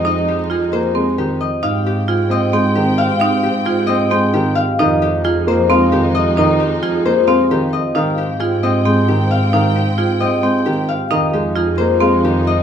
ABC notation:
X:1
M:7/8
L:1/8
Q:1/4=133
K:Fm
V:1 name="Harp"
[GAce] G A c2 G e | f G A e g G f | f G A e g G f | e G A c f G e |
e G A c f G e | f G A e g G f | f G A e g G f | e G A c f G e |]
V:2 name="Marimba"
E z F z C z2 | E z F z C z2 | E z F z C z2 | E z F z C z2 |
E z F z C z2 | E z F z C z2 | E z F z C z2 | E z F z C z2 |]
V:3 name="String section"
[A,E]6 z | [Cg]6- [Cg]- | [Cg]6 z | [A,E]6- [A,E]- |
[A,E]6 z | [Cg]6- [Cg]- | [Cg]6 z | [A,E]6- [A,E] |]
V:4 name="Grand piano" clef=bass
z3 B, A, E, z | z3 C A, E, z | z3 C A, E, z | E, z2 B, A, E, z |
E, z2 B, A, E, z | E, z2 C A, E, z | E, z2 C A, E, z | E, A, z B, A, E, z |]
V:5 name="Double bass section" clef=bass
F,,6- F,, | A,,6- A,,- | A,,6- A,, | F,,6- F,,- |
F,,6- F,, | A,,6- A,,- | A,,6- A,, | F,,6- F,, |]